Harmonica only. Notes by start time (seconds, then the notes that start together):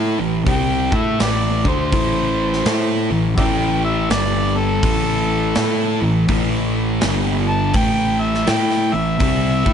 0.50 G5
0.96 E5
1.22 G4 B4 D5
1.67 C5
3.37 D5 E5 G5
3.85 E5
4.11 D5
4.57 A4
7.49 A5
7.77 G5
8.21 E5
8.50 G5
8.93 E5